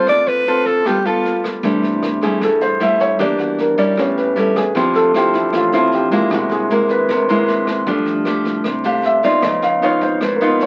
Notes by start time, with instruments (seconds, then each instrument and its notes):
Already playing: nylon-string guitar C4 F4 A4
0.07 upright bass D2, nylon-string guitar D3, alto saxophone D5, kick, cross-stick, snare
0.26 upright bass D2, alto saxophone B4, snare
0.47 nylon-string guitar C4 F4 A4, snare
0.66 upright bass A1, alto saxophone A4, kick, snare
0.85 upright bass G1, nylon-string guitar G3 B3 F4 A4, alto saxophone G4, kick, cross-stick, snare
1.05 nylon-string guitar B3 F4 A4, alto saxophone F4, snare
1.25 snare
1.44 kick, cross-stick, snare
1.63 upright bass C2, nylon-string guitar C3 G3 A3 E4, grand piano E3 A3 D4, kick, snare
1.82 upright bass C2, snare
2.03 cross-stick, snare
2.22 upright bass G2, nylon-string guitar G3 A3 E4, grand piano G#4, kick, snare
2.41 upright bass G2, nylon-string guitar G2, grand piano A4, kick, cross-stick, snare
2.61 grand piano C5, snare
2.80 nylon-string guitar G3 A3 E4, grand piano E5, snare
3.00 grand piano C#5, kick, snare
3.19 upright bass E2, nylon-string guitar E3 A#3 D4 G4, grand piano G3 A#3 D4 D5, kick, cross-stick, snare
3.38 upright bass E2, grand piano F#4, snare
3.58 grand piano A#4, snare
3.78 upright bass A#1, nylon-string guitar G3 C#4 E4, grand piano D5, kick, snare
3.97 upright bass A1, nylon-string guitar A2, grand piano G3 B3 C#4 C#5, kick, cross-stick, snare
4.17 grand piano B4, snare
4.36 nylon-string guitar G3 C#4 E4, grand piano A4, snare
4.56 grand piano G#4, kick, cross-stick, snare
4.75 upright bass D2, nylon-string guitar D3 F3 C4 E4, grand piano F3 C4 E4 G4, kick, snare
4.93 upright bass D2, grand piano A4, snare
5.14 nylon-string guitar F3 C4 E4, grand piano G4, cross-stick, snare
5.34 upright bass A1, grand piano E4, kick, snare
5.53 upright bass A1, nylon-string guitar A2, grand piano F4, kick, cross-stick, snare
5.72 grand piano F3 C4 E4, nylon-string guitar F3 C4 E4, snare
5.92 grand piano G4, snare
6.11 nylon-string guitar G#3 A#3 E4, grand piano F4, kick, snare
6.31 upright bass C2, nylon-string guitar C3, grand piano G#3 A#3 E4 F#4, kick, cross-stick, snare
6.49 upright bass C2, grand piano G#4, snare
6.70 nylon-string guitar G#3 A#3 E4, grand piano A#4, snare
6.89 upright bass G#1, grand piano B4, kick, snare
7.09 upright bass G#1, nylon-string guitar C3, grand piano A#4, kick, cross-stick, snare
7.29 nylon-string guitar G#3 A#3 E4, grand piano E4, snare
7.48 snare
7.67 kick, cross-stick, snare
7.86 upright bass F2, nylon-string guitar F3 A3 D4 G4, grand piano G3 A3 D4, kick, snare
8.05 upright bass F2, snare
8.25 nylon-string guitar A3 D4 G4, cross-stick, snare
8.45 upright bass C2, kick, snare
8.64 upright bass C2, nylon-string guitar C3, kick, cross-stick, snare
8.84 nylon-string guitar A3 D4 G4, grand piano F5, snare
9.03 grand piano E5, snare
9.23 nylon-string guitar B3 D#4 F4, grand piano D5, kick, snare
9.42 upright bass C#2, nylon-string guitar C#3, grand piano F3 B3 D#4 D#5, kick, cross-stick, snare
9.62 upright bass C#2, grand piano F5, snare
9.82 nylon-string guitar B3 D#4 F4, grand piano C#5, snare
10.01 upright bass G#1, grand piano C5, kick, snare
10.21 upright bass G#1, nylon-string guitar G#2, grand piano B4, kick, cross-stick, snare
10.36 grand piano A#4
10.40 nylon-string guitar B3 D#4 F4, snare
10.49 grand piano B4
10.60 grand piano C#5, snare